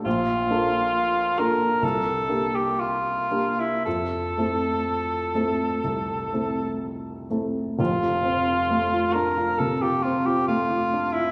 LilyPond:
<<
  \new Staff \with { instrumentName = "Cor anglais" } { \time 4/4 \key f \major \tempo 4 = 66 f'4. bes'8 a'8. g'16 f'8. e'16 | a'2. r4 | f'4. bes'8 a'16 g'16 f'16 g'16 f'8. e'16 | }
  \new Staff \with { instrumentName = "Grand piano" } { \time 4/4 \key f \major bes,,8 <bes d' f' a'>4 <bes d' f' a'>8 c,8 <bes d' g'>4 <bes d' g'>8 | f,8 <a c' e' a'>4 <a c' e' a'>8 c,8 <a c' e' a'>4 <a c' e' a'>8 | <f,, f,>16 f'16 c'16 f'16 a16 f'16 d'16 f'16 c16 f'16 c'16 f'16 a16 f'16 d'16 f'16 | }
>>